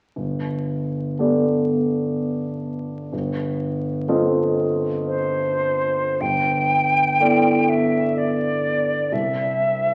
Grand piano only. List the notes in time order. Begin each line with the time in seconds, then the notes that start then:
0.16 G1
1.19 A3 B3 G4 D5
3.13 G1
4.08 A3 C4 F4 D#5
6.21 G1
7.20 B3 E4 A4 D5
9.12 C2